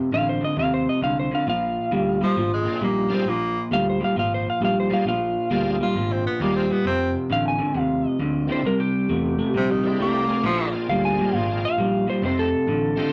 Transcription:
0.11 fingered electric bass A1, clean electric guitar F2 D3, electric slide guitar F5
0.29 electric slide guitar C5
0.41 clean electric guitar F2 D3, electric slide guitar D#5
0.56 fingered electric bass D#2, clean electric guitar F2 C3, electric slide guitar F5
0.74 electric slide guitar C5
0.89 electric slide guitar D#5
1.01 fingered electric bass C2, clean electric guitar F2 D3, electric slide guitar F5
1.20 electric slide guitar C5
1.31 clean electric guitar F2 D3, electric slide guitar F5
1.47 fingered electric bass A#1, clean electric guitar A#2 F3, electric slide guitar F5
1.91 fingered electric bass D2, clean electric guitar A#2 G3
2.21 clean electric guitar A#2 G3, tenor saxophone F3
2.36 fingered electric bass G#1, clean electric guitar A#2 F3
2.53 tenor saxophone G#3
2.64 tonewheel organ A#3 C4 D4 F4 G#4
2.81 fingered electric bass A#1, clean electric guitar A#2 G3, tenor saxophone A#3
3.09 clean electric guitar A#2 G3, tonewheel organ A#3 C4 D4 F4 G#4
3.14 tenor saxophone C4
3.26 fingered electric bass A#1, clean electric guitar A#2 F3, tenor saxophone A#3
3.71 fingered electric bass D2, clean electric guitar A#2 G3, electric slide guitar F5
3.90 electric slide guitar C5
4.00 clean electric guitar A#2 G3
4.04 electric slide guitar F5
4.16 fingered electric bass G#1, clean electric guitar A#2 F3, electric slide guitar F5
4.34 electric slide guitar C5
4.50 electric slide guitar F5
4.60 fingered electric bass A#1, clean electric guitar A#2 G3
4.65 electric slide guitar F5
4.80 electric slide guitar C5
4.89 clean electric guitar A#2 G3, tonewheel organ A#3 C4 D4 F4 G#4
4.93 electric slide guitar F5
5.05 fingered electric bass A#1, clean electric guitar A#2 F3, electric slide guitar F5
5.50 fingered electric bass D2, clean electric guitar A#2 G3, tonewheel organ A#3 C4 D4 F4 G#4
5.80 clean electric guitar A#2 G3, tenor saxophone F4
5.95 fingered electric bass G#1, clean electric guitar A#2 F3
6.12 tenor saxophone C4
6.27 tenor saxophone B3
6.39 fingered electric bass D#2, clean electric guitar A#2 G3, tonewheel organ A#3 C4 D4 F4 G#4, tenor saxophone A#3
6.56 tenor saxophone C4
6.70 clean electric guitar A#2 G3, tenor saxophone B3
6.85 fingered electric bass F1, clean electric guitar F2 C3, tenor saxophone C4
7.29 fingered electric bass A1, clean electric guitar F2 D3, electric slide guitar F5
7.48 electric slide guitar G#5
7.58 clean electric guitar F2 D3
7.74 fingered electric bass D#2, clean electric guitar F2 C3
7.79 electric slide guitar F5
8.07 electric slide guitar D#5
8.19 fingered electric bass D2, clean electric guitar F2 D3
8.47 clean electric guitar F2 D3, tonewheel organ A#3 C4 D4 E4 G4
8.52 electric slide guitar C5
8.63 fingered electric bass C2, clean electric guitar C3 G3, electric slide guitar A#4
8.80 electric slide guitar G4
9.09 fingered electric bass E2, clean electric guitar C3 A3
9.38 clean electric guitar C3 A3
9.54 fingered electric bass A#1, clean electric guitar C3 G3, tenor saxophone C3
9.71 tenor saxophone D#3
9.82 tonewheel organ A#3 C4 D4 E4 G4
9.87 tenor saxophone G#3
9.99 fingered electric bass C2, clean electric guitar C3 A3, tenor saxophone A#3
10.27 clean electric guitar C3 A3, tonewheel organ A#3 C4 D4 F4 G#4
10.42 fingered electric bass A#1, clean electric guitar A#2 F3, tenor saxophone F3, tonewheel organ A3 B3 C#4 E4 G4
10.72 tonewheel organ A#3 C4 D4 F4 G#4
10.89 fingered electric bass D2, clean electric guitar A#2 G3, electric slide guitar F5
11.05 electric slide guitar G#5
11.19 clean electric guitar A#2 G3
11.33 fingered electric bass G#1, clean electric guitar A#2 F3, electric slide guitar F5
11.65 electric slide guitar F5
11.78 fingered electric bass A#1, clean electric guitar A#2 G3
12.07 clean electric guitar A#2 G3, electric slide guitar C5
12.22 fingered electric bass F1, clean electric guitar F2 C3, tonewheel organ A3 C4 D#4 F4 G4, electric slide guitar C5
12.39 electric slide guitar A4
12.67 fingered electric bass A1, clean electric guitar F2 D3
12.96 clean electric guitar F2 D3, tonewheel organ A3 C4 D#4 F4 G4

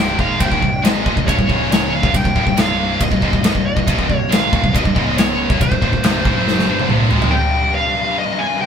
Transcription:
Already playing: picked electric bass C1, distorted electric guitar C2 G2 C3, lead electric guitar G5
0.18 picked electric bass G#1, distorted electric guitar G#2 D#3 G#3, lead electric guitar F5, kick
0.40 picked electric bass C1, distorted electric guitar C2 G2, lead electric guitar G5, kick, ride bell
0.50 picked electric bass C#1, distorted electric guitar C#2 G#2, kick
0.62 picked electric bass C1, distorted electric guitar C2 G2, kick
0.83 picked electric bass G#1, distorted electric guitar G#2 D#3 G#3, lead electric guitar D#5, snare, ride bell
1.05 picked electric bass D#1, distorted electric guitar D#2 A#2, lead electric guitar D#5, kick
1.16 picked electric bass C1, distorted electric guitar C2 G2, kick
1.27 picked electric bass C1, distorted electric guitar C2 G2, lead electric guitar C#5, kick, ride bell
1.38 picked electric bass C1, distorted electric guitar C2 G2, kick
1.49 picked electric bass C#1, distorted electric guitar C#2 G#2 C#3, kick
1.72 lead electric guitar C#5, snare, ride bell
1.95 lead electric guitar F5
2.03 picked electric bass C1, distorted electric guitar C2 G2, kick
2.14 picked electric bass C1, distorted electric guitar C2 G2, lead electric guitar G5, kick, ride bell
2.25 picked electric bass C1, distorted electric guitar C2 G2, kick
2.36 picked electric bass D#1, distorted electric guitar D#2 A#2, kick
2.46 picked electric bass C1, distorted electric guitar C2 G2, kick
2.57 picked electric bass C1, distorted electric guitar C2 G2 C3, lead electric guitar F5, snare, ride bell
3.01 picked electric bass C1, distorted electric guitar C2 G2, lead electric guitar D#5, kick, ride bell
3.12 picked electric bass C1, distorted electric guitar C2 G2, kick
3.22 picked electric bass C#1, distorted electric guitar C#2 G#2, kick
3.33 picked electric bass C1, distorted electric guitar C2 G2, kick
3.43 picked electric bass C1, distorted electric guitar C2 G2, lead electric guitar D#5, snare, ride bell
3.54 picked electric bass C1, distorted electric guitar C2 G2, kick
3.66 lead electric guitar D#5
3.76 picked electric bass C1, distorted electric guitar C2 G2, kick
3.87 picked electric bass C1, distorted electric guitar C2 G2, kick, ride bell
3.98 picked electric bass C#1, distorted electric guitar C#2 G#2, kick
4.09 picked electric bass C1, distorted electric guitar C2 G2, kick
4.16 lead electric guitar C#5
4.30 picked electric bass G#1, distorted electric guitar G#2 D#3 G#3, lead electric guitar F5, snare, ride bell
4.52 picked electric bass D#1, distorted electric guitar D#2 A#2, kick
4.62 picked electric bass C1, distorted electric guitar C2 G2, kick
4.73 picked electric bass C1, distorted electric guitar C2 G2, lead electric guitar D#5, kick, ride bell
4.84 picked electric bass C1, distorted electric guitar C2 G2, kick
4.94 picked electric bass C#1, distorted electric guitar C#2 G#2 C#3, kick
5.18 lead electric guitar C#5, snare, ride bell
5.49 picked electric bass C1, distorted electric guitar C2 G2, kick
5.60 picked electric bass C1, distorted electric guitar C2 G2, lead electric guitar C5, kick, ride bell
5.71 picked electric bass C1, distorted electric guitar C2 G2, kick
5.81 picked electric bass D#1, distorted electric guitar D#2 A#2, kick
5.92 picked electric bass C1, distorted electric guitar C2 G2, kick
6.03 picked electric bass C1, distorted electric guitar C2 G2 C3, snare, ride bell
6.24 picked electric bass C#1, distorted electric guitar C#2 G#2, kick
6.35 picked electric bass F#1, distorted electric guitar F#2 C#3 F#3
6.48 snare
6.59 snare
6.67 picked electric bass G1, distorted electric guitar G2 D3 G3
6.80 high tom
6.89 picked electric bass C1, distorted electric guitar C2 G2 C3, mid tom
7.10 picked electric bass G#1, distorted electric guitar G#2 D#3 G#3, floor tom
7.22 floor tom
7.31 distorted electric guitar C2 G2, lead electric guitar G5
7.40 distorted electric guitar C2 G2
7.47 distorted electric guitar C2 G2
7.55 distorted electric guitar C2 G2
7.62 distorted electric guitar C2 G2
7.70 distorted electric guitar C2 G2
7.75 distorted electric guitar C2 G2, lead electric guitar F5
7.86 distorted electric guitar C2 G2
7.95 distorted electric guitar C2 G2
8.01 distorted electric guitar C2 G2
8.10 distorted electric guitar C2 G2
8.17 distorted electric guitar C2 G2, lead electric guitar D#5
8.25 distorted electric guitar C2 G2
8.32 distorted electric guitar C2 G2
8.39 distorted electric guitar C2 G2, lead electric guitar G#5
8.49 distorted electric guitar C2 G2
8.56 distorted electric guitar C2 G2
8.61 lead electric guitar G5

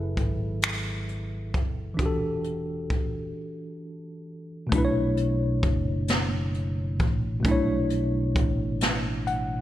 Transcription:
Already playing: fingered electric bass F#1, tine electric piano F#3 E4 G#4 A4 B4 E5
0.17 fingered electric bass G#1, kick, closed hi-hat
0.62 finger snap, closed hi-hat
1.08 closed hi-hat
1.54 fingered electric bass F#1, kick, closed hi-hat
1.94 tine electric piano E3 D4
1.99 fingered electric bass E1, tine electric piano F#4, kick, closed hi-hat
2.03 tine electric piano G4 A4
2.44 closed hi-hat
2.90 kick, closed hi-hat
4.67 tine electric piano B2 A3
4.72 fingered electric bass B1, tine electric piano D4 E4, kick, closed hi-hat
4.78 tine electric piano B4
4.85 tine electric piano C#5
5.17 closed hi-hat
5.63 fingered electric bass F#1, kick, closed hi-hat
6.08 snare, closed hi-hat
6.54 closed hi-hat
6.99 fingered electric bass A1, kick, closed hi-hat
7.40 tine electric piano B2 A3
7.45 fingered electric bass B1, tine electric piano D4 E4, kick, closed hi-hat
7.51 tine electric piano C#5
7.90 closed hi-hat
8.36 fingered electric bass A1, kick, closed hi-hat
8.81 snare, closed hi-hat
9.27 tine electric piano F#5, closed hi-hat

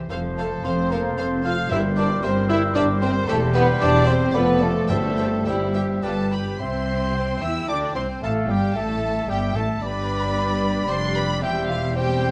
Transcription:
0.09 double bass section F1, cello section F2, bassoon F3, viola section A4 C5, clarinet A4, violin section C5 F5, oboe C5
0.37 french horn section A3, violin section A4 C5 F5, viola section A4 C5, flute A5
0.63 double bass section F1, cello section F2, french horn section C4, viola section A4 C5, violin section C5 F5, flute C6
0.90 french horn section A#3, viola section A4 C5, violin section A#4 C5 F5, flute A#5
1.16 double bass section F1, cello section F2, french horn section C4, viola section A4 C5, violin section C5 F5, flute C6
1.43 french horn section F4, viola section A4 C5, violin section C5 F5, flute F6
1.70 double bass section G1, cello section G2, timpani G2, bassoon G3, french horn section E4, viola section G4 A#4, clarinet A#4, violin section C5 E5, flute E6
1.96 french horn section D4, viola section G4 A#4, violin section C5 D5 E5, flute D6
2.22 double bass section G1, cello section G2, french horn section C4, viola section G4 A#4, violin section C5 E5, flute C6
2.48 french horn section E4, viola section G4 A#4, violin section C5 E5, flute E6
2.74 double bass section G1, cello section G2, french horn section D4, viola section G4 A#4, violin section C5 D5 E5, flute D6
3.01 french horn section C4, viola section G4 A#4, violin section C5 E5, flute C6
3.27 double bass section E1, cello section E2, bassoon G3, french horn section A3, clarinet G4, viola section G4, violin section A4 C5 E5, oboe C5, flute A5
3.54 french horn section B3, viola section G4, violin section B4 C5 E5, flute B5
3.80 double bass section E1, cello section E2, french horn section D4, viola section G4, violin section C5 D5 E5, flute D6
4.05 french horn section C4, viola section G4, violin section C5 E5, flute C6
4.33 double bass section F1, cello section F2, bassoon F3, french horn section B3, viola section F4 A4, clarinet A4, violin section B4 D5, oboe D5, flute B5
4.60 french horn section A3, viola section F4 A4, violin section A4 D5, flute A5
4.87 double bass section G1, timpani G2, cello section G2, bassoon G3, french horn section A3, viola section G4 C5, violin section A4 E5 G5, clarinet C5, oboe E5, flute A5
5.17 viola section G4 C5, violin section E5 G5
5.46 double bass section G1, cello section G2, bassoon G3, french horn section G3, viola section E4, violin section G4 E5 G5, clarinet C5, oboe E5, flute G5
5.75 viola section G4, violin section E5 G5
6.02 double bass section G1, cello section G2, bassoon G3, viola section F4, violin section A4 D5 G5 A5, clarinet B4, oboe D5, flute A5
6.31 viola section G4, violin section B4 D5 G5 B5, flute B5
6.60 double bass section C2, cello section C3, bassoon C4, viola section C4, french horn section C4, violin section C5 C6, oboe C5, clarinet E5, flute C6
7.16 clarinet G5
7.41 double bass section E2, cello section E3, bassoon E4, french horn section E4, viola section E4, violin section E5 E6, oboe E5, flute E6
7.68 double bass section D2, cello section D3, bassoon D4, viola section D4, french horn section D4, violin section D5 D6, oboe D5, clarinet G5, flute D6
7.95 double bass section C2, cello section C3, bassoon C4, viola section C4, french horn section C4, oboe C5, violin section C5 C6, flute C6
8.22 double bass section A1, cello section A2, viola section A3, bassoon A3, french horn section A3, oboe A4, violin section A4 A5, clarinet F5, flute A5
8.49 double bass section G1, cello section G2, bassoon G3, viola section G3, french horn section G3, violin section G4 G5, oboe G4, flute G5
8.75 double bass section A1, cello section A2, bassoon A3, french horn section A3, viola section A3, oboe A4, violin section A4 A5, clarinet E5, flute A5
9.29 double bass section G1, cello section G2, viola section G3, bassoon G3, french horn section G3, oboe G4, violin section G4 G5, flute G5
9.54 double bass section A1, cello section A2, french horn section A3, bassoon A3, viola section A3, oboe A4, violin section A4 A5, flute A5
9.80 double bass section G1, cello section G2, french horn section G3 D4, bassoon G3, viola section D4 G4, violin section B4 B5, clarinet D5, oboe D5, flute B5
10.88 double bass section F1, cello section F2, french horn section G3 D4, bassoon G3, viola section D4 G4, violin section C5 C6, oboe D5, flute C6
11.15 violin section B4 B5, flute B5
11.41 double bass section E1, cello section E2, french horn section G3 C4, bassoon G3, viola section C4 G4, violin section G4 G5, oboe C5, clarinet E5, flute G5
11.69 violin section F4 F5, flute F5
11.94 french horn section G3 C4, bassoon G3, viola section C4 G4, violin section G4 G5, clarinet C5, oboe C5, flute G5

